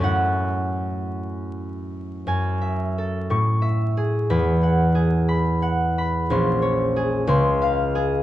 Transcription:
<<
  \new Staff \with { instrumentName = "Harp" } { \time 6/8 \key fis \minor \tempo 4. = 60 << { <fis'' gis'' a''>2.~ | <fis'' gis'' a''>2. | r2. | r2. | } \\ { r2. | gis''8 e''8 a'8 cis'''8 e''8 gis'8 | b''8 fis''8 gis'8 b''8 fis''8 b''8 | bis''8 cis''8 gis'8 bis''8 eis''8 gis'8 | } >> }
  \new Staff \with { instrumentName = "Harp" } { \time 6/8 \key fis \minor <fis, a cis' e' fis' a' cis''>2. | fis,4. a,4. | e,2. | <ais,, cis'>4. <cis, cis'>4. | }
>>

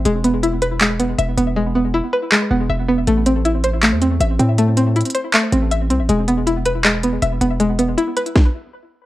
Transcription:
<<
  \new Staff \with { instrumentName = "Synth pluck" } { \time 4/4 \key e \phrygian \tempo 4 = 159 gis8 b8 e'8 b'8 gis8 b8 e''8 b8 | gis8 b8 e'8 b'8 gis8 b8 e''8 b8 | a8 c'8 e'8 c''8 a8 c'8 e''8 c'8 | a8 c'8 e'8 c''8 a8 c'8 e''8 c'8 |
gis8 b8 e'8 b'8 gis8 b8 e''8 b8 | gis8 b8 e'8 b'2~ b'8 | }
  \new Staff \with { instrumentName = "808-style bass" } { \clef bass \time 4/4 \key e \phrygian e,,2. e,,8 e,,8~ | e,,4~ e,,16 r4 r16 e,,8 e,,4 | a,,2~ a,,16 e,8. a,,8 a,8~ | a,4~ a,16 r4 r16 a,,4 c,16 a,,16 |
e,,2. e,,8 e,,8~ | e,,4 r2. | }
  \new DrumStaff \with { instrumentName = "Drums" } \drummode { \time 4/4 hh8 hh8 hh8 hh8 <hc hh>8 hh8 hh8 hh8 | r4 r4 hc4 r4 | hh8 hh8 hh8 hh8 <hc hh>8 hh8 hh8 hh8 | hh8 hh8 hh32 hh32 hh32 hh32 hh8 <hc hh>8 hh8 hh8 hh8 |
hh8 hh8 hh8 hh8 <hc hh>8 hh8 hh8 hh8 | hh8 hh8 hh8 hh16 hh16 <bd sn>4 r4 | }
>>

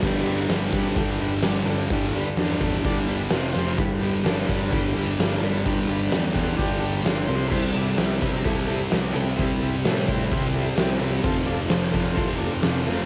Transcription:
<<
  \new Staff \with { instrumentName = "Transistor combo organ" } { \time 4/4 \key g \major \tempo 4 = 128 << { r1 | r1 | r1 | r4. fis''8 g''4 c'''4 |
r1 | r1 | r1 | } \\ { <d' g' b'>8 <d' g' b'>8 <d' g' b'>8 <d' g' b'>8 <d' g' a'>8 <d' g' b'>8 <d' g' d''>8 <d' g' a'>8 | <d' g' a'>8 <d' g' b'>8 <d' g' a'>8 <d' g' a'>8 <d' g' d''>8 <d' g' b'>8 <c' f' c''>8 <c' f' c''>8 | <d' g' b'>8 <d' g' b'>8 <d' g' a'>8 <d' g' b'>8 <d' g' b'>8 <d' g' b'>8 <d' g' a'>8 <d' g' b'>8 | <d' g' b'>8 <d' g' b'>8 <d' g' b'>8 <d' g' a'>8 <d' g' d''>8 <d' g' a'>8 <d' g' d''>8 <c' g' c''>8 |
<e' g' c''>8 <e' g' d''>8 <e' g' c''>8 <e' g' b'>8 <e' g' a'>8 <e' g' a'>8 <e' g' d''>8 <e' g' a'>8 | <e' g' c''>8 <e' g' c''>8 <e' g' a'>8 <e' g' c''>8 <e' g' c''>8 <e' g' a'>8 <e' g' c''>8 <e' g' c''>8 | <f' a' c''>8 <f' a' d''>8 <f' a' c''>8 <f' a' c''>8 <f' a' c''>8 <f' a' d''>8 <f' a' d''>8 <f' a' c''>8 | } >> }
  \new Staff \with { instrumentName = "Distorted electric guitar" } { \clef bass \time 4/4 \key g \major <g, d g>4 <g, d g>8 <g, d g>8 <g, d g>4 <g, d g>8 <g, d g>8 | <g, d g>4 <g, d g>8 <g, d g>8 <g, d g>4 <f, c f>8 <f, c f>8 | <g, d g>4 <g, d g>8 <g, d g>8 <g, d g>4 <g, d g>8 <g, d g>8 | <g, d g>4 <g, d g>8 <g, d g>8 <g, d g>4 <g, d g>8 <c g c'>8 |
<c g c'>4 <c g c'>8 <c g c'>8 <c g c'>4 <c g c'>8 <c g c'>8 | <c g c'>4 <c g c'>8 <c g c'>8 <c g c'>4 <c g c'>8 <c g c'>8 | <f, c f>4 <f, c f>8 <f, c f>8 <f, c f>4 <f, c f>8 <f, c f>8 | }
  \new Staff \with { instrumentName = "Picked electric bass" } { \clef bass \time 4/4 \key g \major g,,8 g,,8 g,,8 g,8 g,,8 g,,8 g,,8 g,,8 | g,,8 g,,8 e,4 g,,4 f,,8 f,,8 | g,,8 g,,8 g,,8 g,8 g,,8 g,,8 g,,8 g,,8 | g,,8 g,,8 e,4 g,,4 g,,8 c,8 |
c,8 c,8 c,8 c8 c,8 c,8 c,8 c,8 | c,8 c,8 a,4 c,4 c,4 | f,,8 f,,8 f,,8 f,8 f,,8 f,,8 f,,8 f,,8 | }
  \new DrumStaff \with { instrumentName = "Drums" } \drummode { \time 4/4 <cymc bd>8 hho8 <hho sn>8 <hho bd>8 <hho bd>8 hho8 <hho sn>8 hho8 | <hho bd>8 hho8 <hho sn>8 <hho bd>8 <hho bd>8 hho8 <hho sn>8 hho8 | <hho bd>8 hho8 <hho sn>8 <hho bd>8 <hho bd>8 hho8 <hho sn>8 hho8 | <hho bd>8 hho8 <hho sn>8 <hho bd>8 <hho bd>8 hho8 sn8 hho8 |
<cymc bd>8 hho8 <hho sn>8 <hho bd>8 <hho bd>8 hho8 <hho sn>8 hho8 | <hho bd>8 hho8 <hho sn>8 <hho bd>8 <hho bd>8 hho8 <hho sn>8 hho8 | <hho bd>8 hho8 <hho sn>8 <hho bd>8 <hho bd>8 hho8 sn8 hho8 | }
>>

